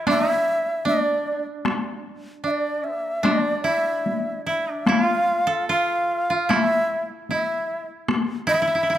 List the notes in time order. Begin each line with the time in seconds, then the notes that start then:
Already playing: E4
0.07 D4 E5, taiko rim, taiko high
0.30 E4
0.85 D4 D5, taiko high
1.65 taiko rim, taiko high
2.44 D4 E5
2.51 D5
2.84 E5
2.96 A#3
3.23 D4 D5, taiko rim, taiko high
3.64 E4 E5
4.06 taiko high
4.46 E4 E5
4.71 D4
4.86 E4 F5, taiko rim, taiko high
5.02 F4
5.47 A4
5.69 F4 F5
6.30 F4
6.49 E4 E5, taiko rim, taiko high
7.29 E4 E5, taiko high
8.09 taiko rim, taiko high
8.47 E4 E5
8.54 E4
8.62 E4
8.67 E4
8.75 E4
8.83 E4
8.90 E4
8.95 E4